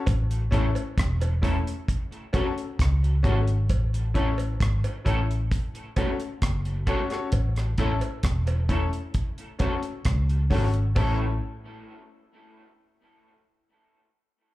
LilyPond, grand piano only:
\new Staff \with { instrumentName = "Grand piano" } { \time 4/4 \key a \major \tempo 4 = 66 r8 <cis' e' a' cis''>16 r8. <cis' e' a' cis''>16 r8. <cis' fis' a' cis''>16 r8. <cis' fis' a' cis''>16 r16 | r8 <cis' e' a' cis''>16 r8. <cis' e' a' cis''>16 r8. <cis' fis' a' cis''>16 r8. <cis' fis' a' cis''>16 <cis' fis' a' cis''>16 | r8 <cis' e' a' cis''>16 r8. <cis' e' a' cis''>16 r8. <cis' fis' a' cis''>16 r8. <cis' fis' a' cis''>16 r16 | <cis' e' a' cis''>8 r2. r8 | }